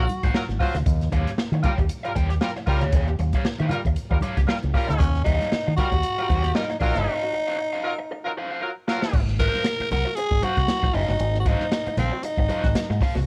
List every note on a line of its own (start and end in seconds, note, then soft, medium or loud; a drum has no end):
0.00 0.59 F#4 loud
0.09 closed hi-hat medium
0.09 high conga medium
0.23 0.33 G#1 loud
0.23 0.34 F#4 medium
0.23 0.35 C5 medium
0.23 0.34 F5 medium
0.23 kick medium
0.23 snare soft
0.23 closed hi-hat soft
0.34 0.44 F#3 medium
0.34 0.44 F4 medium
0.34 0.44 A#4 loud
0.34 muted overdriven electric guitar stroke soft
0.34 snare loud
0.34 muted conga soft
0.34 high conga medium
0.49 0.58 G#1 medium
0.49 snare soft
0.49 closed hi-hat soft
0.60 0.77 F#3 loud
0.60 0.76 F4 medium
0.60 0.74 F#4 medium
0.60 0.77 C5 loud
0.60 0.74 C5 medium
0.60 0.74 F5 medium
0.60 kick medium
0.60 snare soft
0.60 open hi-hat medium
0.60 high conga medium
0.74 0.84 D2 medium
0.74 muted overdriven electric guitar stroke soft
0.74 snare soft
0.74 closed hi-hat medium
0.74 low conga medium
0.86 1.08 D#2 loud
0.86 kick loud
0.86 closed hi-hat loud
0.86 muted conga soft
0.86 low conga medium
1.01 snare soft
1.01 closed hi-hat soft
1.12 1.25 D#2 loud
1.12 1.29 G4 medium
1.12 1.29 C#5 medium
1.12 1.29 F5 medium
1.12 kick medium
1.12 closed hi-hat medium
1.12 high conga medium
1.27 snare soft
1.27 closed hi-hat medium
1.27 high conga medium
1.38 muted fingered electric bass stroke soft
1.38 muted overdriven electric guitar stroke soft
1.38 snare medium
1.38 muted conga soft
1.52 1.62 D#3 medium
1.52 muted overdriven electric guitar stroke soft
1.52 closed hi-hat soft
1.52 muted conga soft
1.63 1.72 G3 loud
1.63 1.72 F4 medium
1.63 1.81 G4 medium
1.63 1.73 A#4 loud
1.63 1.78 C#5 medium
1.63 1.78 G5 medium
1.63 kick medium
1.63 closed hi-hat medium
1.63 high conga loud
1.63 low conga medium
1.78 1.88 D#2 medium
1.78 muted overdriven electric guitar stroke soft
1.78 kick medium
1.78 closed hi-hat soft
1.89 closed hi-hat loud
2.03 2.11 G3 medium
2.03 2.12 F4 medium
2.03 2.12 A#4 medium
2.03 muted overdriven electric guitar stroke soft
2.03 closed hi-hat soft
2.03 muted conga soft
2.15 2.38 D#2 medium
2.15 2.32 G4 medium
2.15 2.30 C#5 loud
2.15 2.30 G5 loud
2.15 kick medium
2.15 closed hi-hat medium
2.15 high conga medium
2.30 muted overdriven electric guitar stroke soft
2.30 snare soft
2.30 closed hi-hat soft
2.41 2.51 G3 medium
2.41 2.50 F4 medium
2.41 2.51 A#4 loud
2.41 muted overdriven electric guitar stroke soft
2.41 snare loud
2.41 muted conga soft
2.41 high conga medium
2.56 muted overdriven electric guitar stroke medium
2.56 snare soft
2.56 muted conga soft
2.67 2.79 C#2 loud
2.67 2.83 G3 medium
2.67 2.83 F4 loud
2.67 2.81 G4 medium
2.67 2.83 A#4 loud
2.67 2.81 C#5 medium
2.67 2.81 G5 medium
2.67 kick medium
2.67 open hi-hat medium
2.81 2.91 D2 medium
2.81 2.93 G4 medium
2.81 2.93 C#5 medium
2.81 2.93 F5 medium
2.81 snare soft
2.81 closed hi-hat soft
2.81 low conga medium
2.93 3.15 D#2 loud
2.93 3.11 G4 medium
2.93 3.08 C#5 medium
2.93 3.07 F5 loud
2.93 kick loud
2.93 closed hi-hat loud
2.93 muted conga soft
2.93 low conga medium
3.07 muted overdriven electric guitar stroke soft
3.07 snare soft
3.07 closed hi-hat soft
3.19 3.31 D#2 loud
3.19 muted overdriven electric guitar stroke soft
3.19 closed hi-hat medium
3.19 high conga medium
3.33 3.44 G4 medium
3.33 3.45 C#5 medium
3.33 3.45 F5 medium
3.33 kick medium
3.33 snare soft
3.33 closed hi-hat medium
3.33 high conga medium
3.44 muted fingered electric bass stroke soft
3.44 muted overdriven electric guitar stroke soft
3.44 snare loud
3.44 muted conga soft
3.58 3.69 D#3 medium
3.58 3.70 G4 medium
3.58 3.71 C#5 medium
3.58 3.72 F5 medium
3.58 closed hi-hat soft
3.58 muted conga soft
3.69 3.80 G3 loud
3.69 3.79 F4 medium
3.69 3.79 A#4 medium
3.69 muted overdriven electric guitar stroke soft
3.69 closed hi-hat medium
3.69 high conga medium
3.69 low conga loud
3.85 3.95 D#2 medium
3.85 muted overdriven electric guitar stroke soft
3.85 kick medium
3.85 closed hi-hat soft
3.95 closed hi-hat loud
3.95 muted conga soft
4.10 4.21 D#2 medium
4.10 4.17 G3 medium
4.10 4.17 F4 medium
4.10 4.17 A#4 medium
4.10 muted overdriven electric guitar stroke soft
4.10 kick medium
4.21 4.39 G4 medium
4.21 4.37 C#5 medium
4.21 4.36 F5 medium
4.21 closed hi-hat medium
4.21 high conga medium
4.37 4.46 C#2 loud
4.37 muted overdriven electric guitar stroke soft
4.37 kick medium
4.37 snare soft
4.37 closed hi-hat medium
4.47 4.56 G3 medium
4.47 4.57 F4 medium
4.47 4.56 A#4 medium
4.47 muted overdriven electric guitar stroke soft
4.47 snare loud
4.47 muted conga soft
4.47 high conga medium
4.63 4.73 C#2 medium
4.63 closed hi-hat soft
4.63 muted conga soft
4.74 5.09 G3 medium
4.74 5.08 F4 loud
4.74 4.88 G4 medium
4.74 5.08 A#4 loud
4.74 4.87 C#5 medium
4.74 4.87 F5 medium
4.74 kick medium
4.74 snare soft
4.74 open hi-hat medium
4.88 4.99 D2 medium
4.88 muted overdriven electric guitar stroke soft
4.88 snare soft
4.88 closed hi-hat medium
4.88 low conga medium
4.98 5.22 D#2 loud
4.98 5.23 C#4 medium
4.98 kick loud
4.98 closed hi-hat loud
4.98 muted conga soft
4.98 low conga medium
5.15 snare soft
5.15 closed hi-hat soft
5.24 5.38 D#2 medium
5.24 5.73 D#4 loud
5.24 5.46 G4 medium
5.24 5.47 C#5 medium
5.24 5.47 F5 loud
5.24 kick medium
5.24 closed hi-hat medium
5.24 high conga medium
5.40 snare soft
5.40 closed hi-hat soft
5.40 high conga medium
5.51 muted overdriven electric guitar stroke soft
5.51 muted fingered electric bass stroke medium
5.51 snare loud
5.51 muted conga soft
5.67 5.77 D#3 medium
5.67 muted overdriven electric guitar stroke soft
5.77 5.87 G3 loud
5.77 5.87 F4 medium
5.77 6.57 F#4 loud
5.77 5.95 G4 medium
5.77 5.87 A#4 loud
5.77 5.93 C#5 medium
5.77 5.93 G5 loud
5.77 kick medium
5.77 closed hi-hat medium
5.77 high conga medium
5.77 low conga medium
5.92 6.01 D#2 medium
5.92 muted overdriven electric guitar stroke soft
5.92 kick medium
5.92 closed hi-hat soft
6.03 closed hi-hat loud
6.03 muted conga soft
6.18 6.25 G3 medium
6.18 6.25 F4 medium
6.18 6.25 A#4 medium
6.18 muted overdriven electric guitar stroke soft
6.18 closed hi-hat soft
6.18 muted conga soft
6.29 6.51 D#2 loud
6.29 6.50 G4 medium
6.29 6.43 C#5 medium
6.29 6.43 G5 medium
6.29 kick medium
6.29 closed hi-hat medium
6.29 high conga medium
6.43 muted overdriven electric guitar stroke soft
6.43 snare soft
6.43 closed hi-hat soft
6.55 6.64 G3 medium
6.55 6.79 D#4 loud
6.55 6.64 F4 medium
6.55 6.64 A#4 loud
6.55 muted overdriven electric guitar stroke soft
6.55 snare loud
6.55 high conga medium
6.70 muted overdriven electric guitar stroke medium
6.70 snare soft
6.70 closed hi-hat soft
6.80 6.93 A#1 medium
6.80 7.15 F#3 loud
6.80 8.57 D#4 loud
6.80 7.15 F4 loud
6.80 6.95 G4 medium
6.80 7.15 A#4 loud
6.80 6.95 C#5 medium
6.80 6.95 G5 medium
6.80 kick medium
6.80 open hi-hat medium
6.95 7.06 G1 loud
6.95 7.06 G4 medium
6.95 7.06 C#5 medium
6.95 7.06 F5 medium
6.95 snare soft
6.95 closed hi-hat medium
6.95 low conga medium
7.06 7.27 F#4 medium
7.06 7.22 C5 medium
7.06 7.22 F5 loud
7.23 muted overdriven electric guitar stroke soft
7.33 muted overdriven electric guitar stroke soft
7.47 7.57 F#4 soft
7.47 7.57 C5 medium
7.47 7.58 F5 medium
7.58 muted overdriven electric guitar stroke medium
7.73 7.84 F#4 medium
7.73 7.84 C5 medium
7.73 7.84 F5 medium
7.83 7.93 F#3 medium
7.83 7.93 F4 loud
7.83 7.93 A#4 loud
7.83 muted overdriven electric guitar stroke soft
7.99 muted overdriven electric guitar stroke soft
8.11 muted overdriven electric guitar stroke soft
8.24 8.31 F#3 medium
8.24 8.31 F4 medium
8.24 8.31 A#4 medium
8.24 muted overdriven electric guitar stroke medium
8.37 8.50 F#4 medium
8.37 8.51 C5 medium
8.37 8.50 F5 medium
8.51 8.61 F#4 soft
8.51 8.61 C5 medium
8.51 8.62 F5 medium
8.61 8.71 F#3 medium
8.61 8.70 F4 medium
8.61 8.70 A#4 medium
8.61 muted overdriven electric guitar stroke soft
8.87 9.22 F#3 medium
8.87 9.22 F4 medium
8.87 9.01 F#4 medium
8.87 9.22 A#4 loud
8.87 9.02 C5 medium
8.87 9.01 F5 medium
8.87 snare medium
9.02 muted overdriven electric guitar stroke soft
9.02 snare medium
9.13 9.48 G#1 loud
9.13 kick loud
9.13 crash loud
9.13 muted conga soft
9.28 snare soft
9.39 9.60 F#4 medium
9.39 9.88 A#4 loud
9.39 9.60 C5 loud
9.39 9.61 F5 medium
9.39 kick medium
9.39 closed hi-hat medium
9.39 high conga medium
9.54 snare soft
9.54 high conga medium
9.65 muted overdriven electric guitar stroke soft
9.65 snare loud
9.65 closed hi-hat medium
9.65 muted conga soft
9.80 muted fingered electric bass stroke medium
9.80 muted overdriven electric guitar stroke soft
9.80 closed hi-hat soft
9.91 10.03 C2 medium
9.91 10.08 F#4 medium
9.91 10.17 A#4 loud
9.91 10.06 C5 loud
9.91 10.05 F#5 loud
9.91 open hi-hat medium
9.91 high conga loud
9.91 low conga medium
10.06 muted overdriven electric guitar stroke medium
10.16 10.46 G#4 loud
10.16 muted overdriven electric guitar stroke soft
10.16 closed hi-hat loud
10.31 10.41 G#1 medium
10.31 kick medium
10.31 muted conga soft
10.43 10.56 F#4 medium
10.43 10.96 F#4 loud
10.43 10.56 C5 medium
10.43 10.57 F5 medium
10.43 closed hi-hat medium
10.43 high conga medium
10.57 10.67 C2 loud
10.57 muted overdriven electric guitar stroke soft
10.57 kick medium
10.57 snare soft
10.57 closed hi-hat medium
10.68 snare loud
10.68 closed hi-hat loud
10.68 muted conga soft
10.68 high conga medium
10.83 10.93 A#1 medium
10.83 muted overdriven electric guitar stroke medium
10.83 kick loud
10.83 snare soft
10.83 muted conga soft
10.94 11.06 F#1 medium
10.94 11.40 D#4 medium
10.94 11.15 F#4 medium
10.94 11.09 C5 medium
10.94 11.08 F5 loud
10.94 open hi-hat medium
11.09 11.18 G1 medium
11.09 muted overdriven electric guitar stroke soft
11.09 snare soft
11.09 low conga medium
11.20 11.54 G#1 loud
11.20 closed hi-hat loud
11.20 muted conga soft
11.35 snare soft
11.40 11.49 F#4 medium
11.46 11.99 D#4 medium
11.46 11.63 F#4 medium
11.46 11.63 C5 loud
11.46 11.63 F5 medium
11.46 kick medium
11.46 closed hi-hat medium
11.46 high conga medium
11.60 snare soft
11.60 high conga medium
11.72 muted overdriven electric guitar stroke soft
11.72 snare loud
11.72 closed hi-hat medium
11.72 muted conga soft
11.87 muted fingered electric bass stroke medium
11.87 muted overdriven electric guitar stroke soft
11.87 closed hi-hat soft
11.87 muted conga soft
11.97 12.09 A#1 medium
11.97 12.25 C4 medium
11.97 12.14 F#4 loud
11.97 12.12 C5 loud
11.97 12.12 F5 loud
11.97 closed hi-hat medium
11.97 high conga medium
11.97 low conga loud
12.13 muted overdriven electric guitar stroke medium
12.23 13.01 D#4 loud
12.23 muted overdriven electric guitar stroke soft
12.23 closed hi-hat loud
12.23 muted conga soft
12.37 12.47 G#1 loud
12.37 muted overdriven electric guitar stroke medium
12.37 kick medium
12.37 muted conga soft
12.49 12.66 F#4 loud
12.49 12.63 C5 loud
12.49 12.62 F5 loud
12.49 closed hi-hat medium
12.49 high conga medium
12.63 12.73 G#1 loud
12.63 muted overdriven electric guitar stroke soft
12.63 kick medium
12.63 snare soft
12.63 closed hi-hat medium
12.75 muted overdriven electric guitar stroke soft
12.75 snare loud
12.75 closed hi-hat loud
12.75 muted conga soft
12.75 high conga medium
12.90 12.99 G#2 loud
12.90 muted overdriven electric guitar stroke medium
12.90 snare soft
13.01 13.18 F#4 medium
13.01 13.15 C5 medium
13.01 13.15 F5 medium
13.01 kick medium
13.01 snare soft
13.01 open hi-hat medium
13.15 13.25 C2 medium
13.15 muted overdriven electric guitar stroke soft
13.15 snare soft
13.15 low conga medium